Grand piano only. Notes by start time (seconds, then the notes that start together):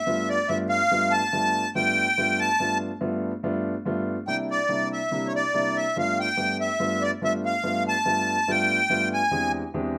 0.06 G2 A3 B3 D4 F4
0.49 G2 A3 B3 D4 F4
0.91 G2 A3 B3 D4 F4
1.33 G2 A3 B3 D4 F4
1.75 G2 A3 B3 D4 F4
2.18 G2 A3 B3 D4 F4
2.60 G2 A3 B3 D4 F4
3.01 G2 A3 B3 D4 F4
3.43 G2 A3 B3 D4 F4
3.85 G2 A3 B3 D4 F4
4.27 C3 G3 A#3 D4 E4
4.69 C3 G3 A#3 D4 E4
5.11 C3 G3 A#3 D4 E4
5.54 C3 G3 A#3 D4 E4
5.96 G2 A3 B3 D4 F4
6.37 G2 A3 B3 D4 G4
6.79 G2 A3 B3 D4 F4
7.21 G2 A3 B3 D4 F4
7.63 G2 A3 B3 D4 F4
8.05 G2 A3 B3 D4 F4
8.48 G2 A3 B3 D4 F4
8.90 G2 A3 B3 D4 F4
9.31 E2 G#3 C4 D4 G4
9.74 E2 G#3 C4 D4 G4